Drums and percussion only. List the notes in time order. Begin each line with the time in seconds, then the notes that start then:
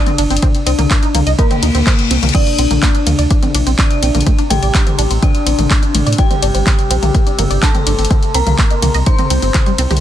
0.06 closed hi-hat, mid tom
0.18 closed hi-hat, ride
0.30 closed hi-hat
0.37 closed hi-hat
0.42 kick, closed hi-hat, mid tom
0.55 closed hi-hat
0.67 closed hi-hat, ride
0.79 closed hi-hat, mid tom
0.91 kick, clap, closed hi-hat
1.03 closed hi-hat
1.15 closed hi-hat, mid tom, ride
1.27 closed hi-hat
1.39 kick, closed hi-hat
1.51 closed hi-hat, mid tom
1.63 closed hi-hat, ride
1.75 closed hi-hat
1.87 kick, clap, closed hi-hat, mid tom
1.99 closed hi-hat
2.11 closed hi-hat, ride
2.23 closed hi-hat, mid tom
2.29 closed hi-hat
2.35 kick, closed hi-hat, mid tom, crash
2.47 closed hi-hat
2.59 closed hi-hat, ride
2.71 closed hi-hat, mid tom
2.83 kick, clap, closed hi-hat
2.95 closed hi-hat
3.07 closed hi-hat, mid tom, ride
3.19 closed hi-hat
3.31 kick, closed hi-hat
3.43 closed hi-hat, mid tom
3.55 closed hi-hat, ride
3.67 closed hi-hat
3.79 kick, clap, closed hi-hat, mid tom
3.91 closed hi-hat
4.03 closed hi-hat, ride
4.15 closed hi-hat, mid tom
4.21 closed hi-hat
4.26 kick, closed hi-hat
4.39 closed hi-hat
4.51 closed hi-hat, mid tom, ride
4.63 closed hi-hat
4.75 kick, clap, closed hi-hat
4.87 closed hi-hat, mid tom
4.99 closed hi-hat, ride
5.11 closed hi-hat
5.23 kick, closed hi-hat, mid tom
5.35 closed hi-hat
5.47 closed hi-hat, ride
5.59 closed hi-hat, mid tom
5.71 kick, clap, closed hi-hat
5.83 closed hi-hat
5.95 closed hi-hat, mid tom, ride
6.07 closed hi-hat
6.13 closed hi-hat
6.18 kick, closed hi-hat
6.31 closed hi-hat, mid tom
6.43 closed hi-hat, ride
6.55 closed hi-hat
6.67 kick, clap, closed hi-hat, mid tom
6.79 closed hi-hat
6.91 closed hi-hat, ride
7.03 closed hi-hat, mid tom
7.15 kick, closed hi-hat
7.27 closed hi-hat
7.39 closed hi-hat, mid tom, ride
7.51 closed hi-hat
7.63 kick, clap, closed hi-hat
7.75 closed hi-hat, mid tom
7.87 closed hi-hat, ride
7.99 closed hi-hat
8.05 closed hi-hat
8.11 kick, closed hi-hat, mid tom
8.23 closed hi-hat
8.34 closed hi-hat, ride
8.47 closed hi-hat, mid tom
8.58 kick, clap, closed hi-hat
8.71 closed hi-hat
8.82 closed hi-hat, mid tom, ride
8.94 closed hi-hat
9.06 kick, closed hi-hat
9.19 closed hi-hat, mid tom
9.30 closed hi-hat, ride
9.42 closed hi-hat
9.54 kick, clap, closed hi-hat, mid tom
9.66 closed hi-hat
9.78 closed hi-hat, ride
9.91 closed hi-hat, mid tom
9.97 closed hi-hat